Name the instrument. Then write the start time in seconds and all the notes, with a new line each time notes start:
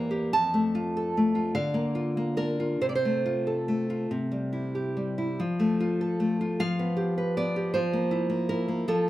nylon-string guitar
Already playing: E2 E3 A#3 A#4 C5
0.11 G4
0.33 F2 A5
0.54 A3
0.75 F4
0.97 A4
1.17 A3
1.35 F4
1.55 D3 F5
1.74 A#3
1.95 F4
2.17 A#3
2.37 D4 A#4
2.60 F4
2.81 C3 C5
2.89 D5
2.95 C5
3.05 A3
3.26 F4
3.47 A4
3.68 A3
3.90 F4
4.11 C3
4.32 G3
4.53 E4
4.75 G4
4.97 G3
5.18 E4
5.40 F3
5.60 A3
5.80 F4
6.01 A4
6.20 A3
6.41 F4
6.60 F3 F5
6.79 B3
6.97 G4
7.18 B4
7.37 B3 D5
7.56 G4
7.74 F3 C5
7.93 A#3
8.11 E4
8.30 A#3
8.49 E4 A#4
8.68 A#3
8.88 F3 A4